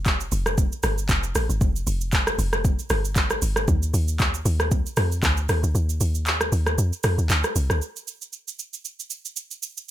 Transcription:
Already playing: log drum bass F1
0.05 kick, clap, shaker
0.21 shaker
0.32 log drum bass F1, open hi-hat, shaker
0.46 cross-stick, shaker
0.58 kick, shaker
0.72 shaker
0.83 log drum bass G1, cross-stick, open hi-hat, shaker
0.98 shaker
1.09 log drum bass F1, kick, clap, shaker
1.23 shaker
1.35 log drum bass A1, cross-stick, open hi-hat, shaker
1.49 log drum bass G1, shaker
1.61 log drum bass F1, kick, shaker
1.76 shaker
1.87 log drum bass F1, open hi-hat, shaker
2.01 shaker
2.12 kick, clap, shaker
2.27 cross-stick, shaker
2.39 log drum bass F1, open hi-hat, shaker
2.53 cross-stick, shaker
2.65 kick, shaker
2.79 shaker
2.90 log drum bass G1, cross-stick, open hi-hat, shaker
3.05 shaker
3.16 kick, clap, shaker
3.30 cross-stick, shaker
3.42 log drum bass G1, open hi-hat, shaker
3.56 cross-stick, shaker
3.68 log drum bass D#2, kick, shaker
3.83 shaker
3.94 log drum bass D#2, open hi-hat, shaker
4.08 shaker
4.19 kick, clap, shaker
4.34 shaker
4.46 log drum bass D#2, open hi-hat, shaker
4.60 cross-stick, shaker
4.71 kick, shaker
4.86 shaker
4.97 log drum bass F2, cross-stick, open hi-hat, shaker
5.12 shaker
5.23 log drum bass D2, kick, clap, shaker
5.37 shaker
5.49 log drum bass D#2, cross-stick, open hi-hat, shaker
5.63 log drum bass D2, shaker
5.75 log drum bass D#2, shaker
5.89 shaker
6.01 log drum bass D#2, open hi-hat, shaker
6.15 shaker
6.26 clap, shaker
6.41 cross-stick, shaker
6.52 log drum bass D#2, open hi-hat, shaker
6.67 cross-stick, shaker
6.78 log drum bass F2, shaker
6.93 shaker
7.04 log drum bass F2, cross-stick, open hi-hat, shaker
7.18 log drum bass D#2, shaker
7.30 log drum bass D2, clap, shaker
7.44 cross-stick, shaker
7.56 log drum bass C2, open hi-hat, shaker
7.70 log drum bass D2, cross-stick, shaker
7.82 shaker
7.96 shaker
8.08 shaker
8.22 shaker
8.33 shaker
8.48 shaker
8.59 shaker
8.73 shaker
8.85 shaker
9.00 shaker
9.10 shaker
9.25 shaker
9.36 shaker
9.51 shaker
9.63 shaker
9.77 shaker

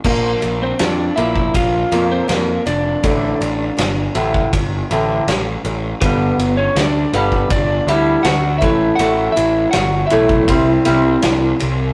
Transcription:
0.04 picked electric bass A#1, steel-string acoustic guitar A#2 F3 A#3, lead electric guitar A#3 A#4, kick, crash
0.41 picked electric bass A#1, steel-string acoustic guitar A#2 F3, ride
0.62 lead electric guitar C4 C5
0.79 picked electric bass F2, steel-string acoustic guitar A#2 F3, lead electric guitar D4 D5, snare, ride
1.16 picked electric bass A#1, steel-string acoustic guitar A#2 F3 A#3, lead electric guitar E4 E5, ride
1.36 kick
1.54 picked electric bass A#1, steel-string acoustic guitar A#2 F3, lead electric guitar F4 F5, kick, ride
1.92 picked electric bass F2, steel-string acoustic guitar A#2 F3 A#3, ride
2.11 lead electric guitar C4 C5
2.28 picked electric bass F2, steel-string acoustic guitar A#2 F3, lead electric guitar A#3 A#4, snare, ride
2.66 picked electric bass F1, steel-string acoustic guitar A#2 F3, lead electric guitar D4 D5, ride
3.03 picked electric bass A1, steel-string acoustic guitar D2 A2 D3, kick, ride
3.41 picked electric bass A1, steel-string acoustic guitar D2 A2, ride
3.77 picked electric bass G1, steel-string acoustic guitar D2 A2, snare, ride
4.15 picked electric bass A1, steel-string acoustic guitar D2 A2 D3, ride
4.34 kick
4.53 picked electric bass G1, steel-string acoustic guitar D2 A2, kick, ride
4.91 picked electric bass A1, steel-string acoustic guitar D2 A2 D3, ride
5.27 picked electric bass A1, steel-string acoustic guitar D2 A2, snare, ride
5.65 picked electric bass A1, steel-string acoustic guitar D2 A2, ride
6.01 picked electric bass G1, steel-string acoustic guitar G2 D3 G3, lead electric guitar B3 B4, kick, ride
6.38 picked electric bass G1, steel-string acoustic guitar G2 D3, ride
6.57 lead electric guitar C#4 C#5
6.76 picked electric bass D2, steel-string acoustic guitar G2 D3, lead electric guitar D5, snare, ride
6.81 lead electric guitar D4
7.13 picked electric bass G1, steel-string acoustic guitar G2 D3 G3, lead electric guitar B3 B4, ride
7.32 kick
7.50 picked electric bass G1, steel-string acoustic guitar G2 D3, lead electric guitar D5, kick, ride
7.55 lead electric guitar D4
7.87 picked electric bass D2, steel-string acoustic guitar G2 D3 G3, lead electric guitar E5, ride
7.94 lead electric guitar E4
8.23 picked electric bass D2, steel-string acoustic guitar G2, lead electric guitar F#5, snare, ride
8.27 lead electric guitar F#4
8.58 picked electric bass A1, steel-string acoustic guitar A2 E3 A3, lead electric guitar E5, kick, ride
8.64 lead electric guitar E4
8.96 steel-string acoustic guitar A2 E3, lead electric guitar F#5, ride
9.00 picked electric bass A1, steel-string acoustic guitar A3, lead electric guitar F#4
9.32 steel-string acoustic guitar A2, lead electric guitar E5
9.36 picked electric bass A1, steel-string acoustic guitar E3, lead electric guitar E4, ride
9.71 steel-string acoustic guitar A2 E3, lead electric guitar F#4 F#5, snare, ride
9.75 picked electric bass G1
10.07 lead electric guitar E5, ride
10.11 picked electric bass B1, steel-string acoustic guitar A2 E3 A3, lead electric guitar E4
10.29 kick
10.48 picked electric bass C2, steel-string acoustic guitar C3 G3 C4, kick, ride
10.85 picked electric bass C2, steel-string acoustic guitar C3 G3 C4, snare, ride
11.22 picked electric bass C2, steel-string acoustic guitar C3 G3, snare, ride
11.59 picked electric bass C2, steel-string acoustic guitar C3 G3, ride

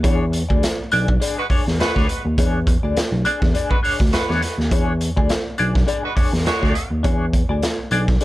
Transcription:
0.03 tine electric piano E2, clean electric guitar D4 G#4 C#5, kick, closed hi-hat
0.32 muted clean electric guitar stroke, closed hi-hat
0.49 tine electric piano D2, clean electric guitar D4 G#4 D5, kick
0.63 snare, closed hi-hat
0.79 tine electric piano B1, muted clean electric guitar stroke
0.92 tine electric piano B1, clean electric guitar D4 G#4 D5, closed hi-hat
1.08 muted clean electric guitar stroke, kick
1.20 clean electric guitar D4 G#4 D5, closed hi-hat
1.37 horn section G#3 F#4 B4, muted clean electric guitar stroke
1.50 tine electric piano E2, clean electric guitar D4 G#4 C#5, kick, open hi-hat
1.66 tine electric piano E2, muted clean electric guitar stroke, snare
1.79 tine electric piano D2, horn section G#3 F#4 B4, muted clean electric guitar stroke, snare, closed hi-hat
1.95 tine electric piano D2, clean electric guitar D4 G#4 C#5, kick, snare
2.08 muted clean electric guitar stroke, closed hi-hat
2.25 tine electric piano D#2, muted clean electric guitar stroke
2.38 tine electric piano E2, clean electric guitar D4 G#4 C#5, kick, closed hi-hat
2.67 muted clean electric guitar stroke, kick, closed hi-hat
2.83 tine electric piano D2, clean electric guitar D4 G#4 D5
2.97 snare, closed hi-hat
3.12 tine electric piano B1, muted clean electric guitar stroke
3.25 clean electric guitar D4 G#4 D5, closed hi-hat
3.41 tine electric piano E2, muted clean electric guitar stroke, kick, snare
3.54 clean electric guitar D4 G#4 D5, closed hi-hat
3.70 horn section G#3 F#4 B4, muted clean electric guitar stroke, kick
3.83 tine electric piano D2, clean electric guitar D4 G#4 C#5, open hi-hat
4.00 tine electric piano D2, muted clean electric guitar stroke, kick, snare
4.12 tine electric piano E2, horn section G#3 F#4 B4, muted clean electric guitar stroke, snare, closed hi-hat
4.29 tine electric piano E2, clean electric guitar D4 G#4 C#5, snare
4.42 muted clean electric guitar stroke, snare, closed hi-hat
4.58 tine electric piano D#2, muted clean electric guitar stroke, snare
4.71 tine electric piano E2, clean electric guitar D4 G#4 C#5, kick, closed hi-hat
5.01 muted clean electric guitar stroke, closed hi-hat
5.17 tine electric piano D2, clean electric guitar D4 G#4 D5, kick
5.29 snare, closed hi-hat
5.45 tine electric piano B1, muted clean electric guitar stroke
5.58 tine electric piano B1, clean electric guitar D4 G#4 D5, closed hi-hat
5.75 muted clean electric guitar stroke, kick, snare
5.87 clean electric guitar D4 G#4 D5, closed hi-hat
6.03 horn section G#3 F#4 B4, muted clean electric guitar stroke
6.15 tine electric piano E2, clean electric guitar D4 G#4 C#5, kick, open hi-hat
6.33 tine electric piano E2, muted clean electric guitar stroke, snare
6.45 tine electric piano D2, horn section G#3 F#4 C#5, muted clean electric guitar stroke, snare, closed hi-hat
6.62 tine electric piano D2, clean electric guitar D4 G#4 C#5, kick, snare
6.74 muted clean electric guitar stroke, closed hi-hat
6.91 tine electric piano D#2, muted clean electric guitar stroke
7.03 tine electric piano E2, clean electric guitar D4 G#4 C#5, kick, closed hi-hat
7.33 muted clean electric guitar stroke, kick, closed hi-hat
7.49 tine electric piano D2, clean electric guitar D4 G#4 D5
7.63 snare, closed hi-hat
7.79 tine electric piano B1, muted clean electric guitar stroke
7.91 tine electric piano B1, clean electric guitar D4 G#4 D5, closed hi-hat
8.08 muted clean electric guitar stroke, kick, snare
8.21 clean electric guitar D4, closed hi-hat

